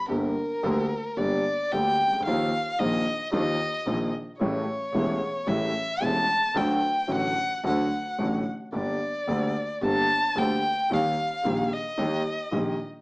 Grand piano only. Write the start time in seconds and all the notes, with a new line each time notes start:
0.08 G1 G2 D3 G3 A#3 G4
0.63 D2 D3 G3 A#3 G4
1.17 G1 G2 D3 G3 A#3 G4
1.73 D2 D3 G3 A#3 G4
2.08 C2
2.13 C#2
2.20 D2
2.27 D#2 D#3 F3 A#3 F4
2.80 A#1 A#2 D#3 F3 A#3 F4
3.32 D#2 D#3 F3 A#3 F4
3.86 A#1 A#2 D#3 F3 A#3 F4
4.40 A1 A2 C#3 G3 A3 E4
4.94 E1 E2 C#3 G3 A3 E4
5.47 A1 A2 C#3 G3 A3 E4
6.00 E1 E2 C#3 G3 A3 E4
6.56 D2 D3 F#3 A3 F#4
7.07 A1 A2 D3 F#3 A3 F#4
7.64 D2 D3 F#3 A3 F#4
8.19 A1 A2 D3 F#3 A3 F#4
8.73 G1 G2 D3 G3 A#3 G4
9.27 D2 D3 G3 A#3 G4
9.82 G1 G2 D3 G3 A#3 G4
10.35 D2 D3 G3 A#3 G4
10.91 D#2 D#3 G3 A#3 G4
11.45 A#1 A#2 D#3 G3 A#3 G4
11.98 D#2 D#3 G3 A#3 G4
12.52 A#1 A#2 D#3 G3 A#3 G4